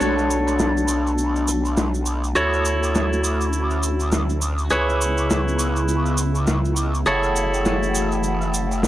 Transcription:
0.00 wobble bass B1, ambient pad A3 B3 D4, clean electric guitar D4 F#4 A4 C#5, crash, cabasa
0.19 cabasa
0.30 cabasa
0.48 cabasa
0.59 snare, cabasa
0.77 cabasa
0.88 cross-stick, cabasa
1.07 cabasa
1.18 cabasa
1.36 cabasa
1.48 cross-stick, cabasa
1.65 cabasa
1.77 snare, cabasa
1.94 cabasa
2.06 cabasa
2.24 cabasa
2.35 wobble bass D2, ambient pad D3 C#4 F#4, clean electric guitar E4 F#4 A4 C#5, cabasa
2.53 cabasa
2.65 cabasa
2.83 cabasa
2.95 snare, cabasa
3.13 cabasa
3.24 cabasa
3.41 cabasa
3.53 cabasa
3.70 cabasa
3.83 cabasa
4.00 cabasa
4.12 snare, cabasa
4.30 cabasa
4.42 cabasa
4.58 cabasa
4.70 wobble bass C#2, ambient pad C#3 B3 E4, clean electric guitar E4 G#4 B4 C#5, cabasa
4.89 cabasa
5.01 cabasa
5.18 cabasa
5.30 snare, cabasa
5.48 cabasa
5.59 cross-stick, cabasa
5.66 cross-stick
5.70 cross-stick
5.76 cross-stick, cabasa
5.79 cross-stick
5.85 cross-stick, cabasa
6.06 cabasa
6.17 cross-stick, cabasa
6.35 cabasa
6.47 snare, cabasa
6.65 cabasa
6.76 cabasa
6.94 cabasa
7.06 wobble bass F#1, ambient pad E3 A3 F#4, clean electric guitar E4 G#4 A4 C#5, cabasa
7.23 cabasa
7.36 cabasa
7.54 cabasa
7.65 snare, cabasa
7.83 cabasa
7.95 cabasa
8.12 cabasa
8.23 cabasa
8.41 cross-stick, cabasa
8.54 cabasa
8.72 cabasa
8.83 snare, cabasa

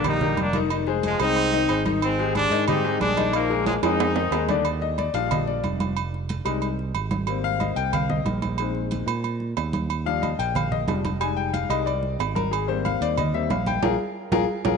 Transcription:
Already playing: fingered electric bass A#1
0.04 grand piano G3 G4 A#4, horn section A#3 D#4, high conga, low conga, low agogo
0.21 grand piano G3 G4 A#4, high conga, low conga
0.37 fingered electric bass F1, horn section A#3, high conga, low agogo
0.41 horn section D4
0.53 grand piano D#3 D#4 D#5, high conga, low agogo
0.70 grand piano D#3 D#4 D#5, high conga, low agogo
0.87 grand piano G#3 G#4 C5, high conga
1.03 horn section F3 G#3, high conga, low agogo
1.20 fingered electric bass C2, grand piano G#3 G#4 C5, horn section C4 D#4, high conga, low agogo
1.36 high conga, low agogo
1.53 grand piano D#3 D#4 D#5, high conga
1.69 fingered electric bass G#1, grand piano G#3 G#4 C5, high conga, low agogo
1.85 grand piano D#3 D#4 D#5, high conga, low agogo
2.02 horn section G#3 C4, high conga, low agogo
2.19 grand piano G#3 G4 G#4, high conga
2.35 horn section G#3 D4, high conga, low agogo
2.50 fingered electric bass G#2, grand piano D#3 D#4 D#5, low agogo
2.67 grand piano G3 G4 G#4, horn section C4 D#4, high conga, low conga, low agogo
2.85 grand piano G#3 G4 G#4, high conga
3.00 fingered electric bass A#1, horn section G#3 D4, high conga, low agogo
3.17 grand piano D#3 D#4 D#5, high conga, low agogo
3.33 grand piano D#3 D#4 D#5, horn section F3 A#3, high conga, low agogo
3.50 grand piano G#3 G#4 A#4, high conga
3.66 horn section F3 G#3, high conga, high timbale, low agogo
3.83 fingered electric bass F2, grand piano G#3 G#4 A#4, horn section C4 D#4, high conga, high timbale, low agogo
4.00 high conga, low timbale, low agogo
4.16 grand piano D#3 D#4 D#5, high conga, low timbale
4.31 fingered electric bass D#2, grand piano G#3 G#4 A#4, high conga, low timbale, low agogo
4.48 grand piano D3 D4 D5, high conga, low timbale, low agogo
4.65 high conga, low agogo
4.81 grand piano D#5, high conga
4.98 grand piano D5, high conga, low agogo
5.14 fingered electric bass A#1, grand piano F3 G3 D4 F5, low agogo
5.31 grand piano D#5, high conga, low conga, low agogo
5.47 grand piano D5, high conga
5.63 fingered electric bass F1, high conga, low agogo
5.80 high conga, low agogo
5.97 high conga, low agogo
6.14 high conga
6.29 high conga, low agogo
6.45 fingered electric bass C2, grand piano G3 G#3 D#4, high conga, low agogo
6.62 high conga, low agogo
6.79 high conga
6.94 fingered electric bass G#1, high conga, low agogo
7.11 high conga, low agogo
7.27 grand piano G3 A#3 C4, high conga, low agogo
7.44 grand piano F5, high conga
7.60 grand piano D#5, high conga, low agogo
7.76 fingered electric bass C2, grand piano G5, low agogo
7.93 grand piano F5, high conga, low conga, low agogo
8.10 grand piano D#5, high conga, low conga
8.25 fingered electric bass A#1, high conga, low agogo
8.42 high conga, low agogo
8.58 grand piano D#3 G#3 C4, high conga, low agogo
8.75 high conga
8.91 high conga, low agogo
9.06 fingered electric bass A#2, high conga, low agogo
9.24 high conga, low agogo
9.40 high conga
9.57 fingered electric bass D#2, high conga, low timbale, low agogo
9.73 high conga, low agogo
9.90 high conga, low agogo
10.06 grand piano F3 G3 D4 F5, high conga
10.22 grand piano D#5, high conga, low agogo
10.39 fingered electric bass A#1, grand piano G5, low agogo
10.55 grand piano F5, high conga, low conga, low agogo
10.72 grand piano D#5, high conga, low conga
10.87 fingered electric bass F1, grand piano F3 G3 D4, high conga, low timbale, low agogo
11.05 high conga, low agogo
11.20 grand piano G3 G#3 D#4 G#5, high conga, low agogo
11.37 grand piano G5, high conga
11.53 grand piano F5, high conga, low agogo
11.69 fingered electric bass C2, grand piano G3 G#3 D#4 D#5, high conga, low agogo
11.86 grand piano D5, high conga, low agogo
12.03 high conga
12.19 fingered electric bass G#1, high conga, low timbale, low agogo
12.35 grand piano A#4, high conga, low agogo
12.51 grand piano G#4, high conga, low agogo
12.68 grand piano G3 A#3 C4 C5, high conga
12.85 grand piano F5, high conga, low agogo
13.01 fingered electric bass D#2, grand piano D5, low agogo
13.18 grand piano D#5, high conga, low conga, low agogo
13.34 grand piano G3 A#3 C4 E5, high conga
13.50 fingered electric bass A#1, grand piano F5, high conga, low timbale, low agogo
13.66 grand piano G5, high conga, low agogo
13.82 fingered electric bass A#1, grand piano F4 G#4 A#4, high conga, high timbale
14.32 fingered electric bass A#1, grand piano F4 G#4 A#4, high conga, high timbale
14.65 fingered electric bass A#1, grand piano F4 G#4 A#4, high conga, high timbale

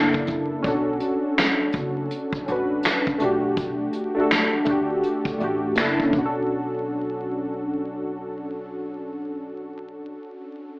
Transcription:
Already playing: upright bass F#1, synth keys A#3 D4 E4 A4
0.13 kick, closed hi-hat
0.27 kick, closed hi-hat
0.62 upright bass B1, synth keys C#4 D4 F#4, kick, closed hi-hat
0.68 synth keys A4
1.00 closed hi-hat
1.38 finger snap, snare, closed hi-hat
1.72 upright bass F#1, kick, closed hi-hat
2.10 closed hi-hat
2.33 kick
2.46 upright bass A1, synth keys C#4 D4 F#4, closed hi-hat
2.52 synth keys B4
2.83 finger snap, snare, closed hi-hat
3.05 kick, closed hi-hat
3.18 upright bass B1, synth keys A3 D4 F#4, closed hi-hat
3.24 synth keys G4
3.56 kick, closed hi-hat
3.93 closed hi-hat
4.15 synth keys A3 D4 F#4
4.20 synth keys A4
4.30 finger snap, snare, closed hi-hat
4.65 upright bass D2, synth keys A3 D4 F#4, kick, closed hi-hat
4.70 synth keys G4
5.03 closed hi-hat
5.25 kick, closed hi-hat
5.38 upright bass A1, synth keys A3 D4 F#4, closed hi-hat
5.44 synth keys G4
5.75 upright bass F#1, synth keys A#3 D4, finger snap, snare, closed hi-hat
5.79 synth keys E4 A4
6.00 synth keys C#4, kick
6.10 upright bass B1, synth keys D4, kick
6.18 synth keys F#4
6.25 synth keys A4

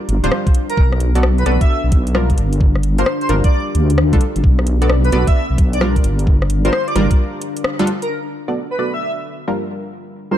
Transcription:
Already playing: synth stab G3 D4 F4 A#4, ambient pad D4 G4 F5 A#5
0.09 wobble bass G1, closed hi-hat
0.24 wobble bass D1, synth stab G3 D4 F4 C5, closed hi-hat
0.32 cross-stick
0.47 kick, closed hi-hat
0.55 closed hi-hat
0.69 digital synth lead A#4, closed hi-hat
0.77 wobble bass B1, kick
0.92 cross-stick
1.00 closed hi-hat
1.15 synth stab B3 F#4 A4 D5, ambient pad A4 B5, closed hi-hat
1.23 cross-stick
1.38 digital synth lead B4, closed hi-hat
1.46 wobble bass B1, synth stab B3 F#4 A4 D5, digital synth lead B4, cross-stick, closed hi-hat
1.61 digital synth lead E5, kick, closed hi-hat
1.69 digital synth lead E5
1.84 wobble bass B1
1.92 kick, closed hi-hat
2.07 closed hi-hat
2.15 synth stab G3 D4 F4 A#4, cross-stick
2.30 kick, closed hi-hat
2.38 wobble bass G1, closed hi-hat
2.53 closed hi-hat
2.61 kick
2.75 ambient pad G4, cross-stick
2.83 closed hi-hat
2.93 ambient pad F5 A#5
2.98 synth stab G3 D4 F4 A#4, digital synth lead C5, closed hi-hat
3.06 cross-stick
3.21 digital synth lead C5, closed hi-hat
3.29 wobble bass G1, synth stab G3 D4 F4 A#4, closed hi-hat
3.44 digital synth lead D5, kick, closed hi-hat
3.52 digital synth lead D5
3.75 wobble bass D2, closed hi-hat
3.90 closed hi-hat
3.98 cross-stick
4.13 wobble bass C2, synth stab G3 D4 F4 A4, kick, closed hi-hat
4.21 closed hi-hat
4.36 wobble bass G1, closed hi-hat
4.44 wobble bass B1, kick
4.59 cross-stick
4.67 closed hi-hat
4.79 synth stab B3 F#4 A4 D5, ambient pad A4, closed hi-hat
4.90 cross-stick
5.04 digital synth lead B4, closed hi-hat
5.12 wobble bass B1, synth stab B3 F#4 A4 D5, digital synth lead B4, closed hi-hat
5.27 digital synth lead E5, kick, closed hi-hat
5.35 digital synth lead E5
5.50 wobble bass B1
5.58 kick, closed hi-hat
5.73 digital synth lead D5, closed hi-hat
5.81 synth stab G3 D4 F4 A#4, cross-stick
5.96 kick, closed hi-hat
6.04 wobble bass G1, closed hi-hat
6.19 ambient pad F5, closed hi-hat
6.27 kick
6.31 ambient pad G4
6.42 cross-stick
6.50 closed hi-hat
6.65 synth stab G3 D4 F4 A#4, digital synth lead C5, closed hi-hat
6.73 digital synth lead C5, cross-stick
6.88 digital synth lead D5, closed hi-hat
6.93 wobble bass G1, synth stab G3 D4 F4 A#4, digital synth lead D5, ambient pad A#5, cross-stick, closed hi-hat
7.11 kick, closed hi-hat
7.42 closed hi-hat
7.57 closed hi-hat
7.64 cross-stick
7.79 synth stab G3 D4 F4 A4, closed hi-hat
7.87 closed hi-hat
8.02 digital synth lead A#4, closed hi-hat
8.33 ambient pad F#5
8.48 synth stab B3 F#4 A4 D5
8.54 ambient pad A4
8.71 digital synth lead B4
8.79 synth stab B3 F#4 A4 D5, digital synth lead B4
8.94 digital synth lead E5
9.02 digital synth lead E5
9.48 synth stab G3 D4 F4 A#4
9.84 ambient pad G4
10.31 synth stab G3 D4 F4 A#4, digital synth lead C5

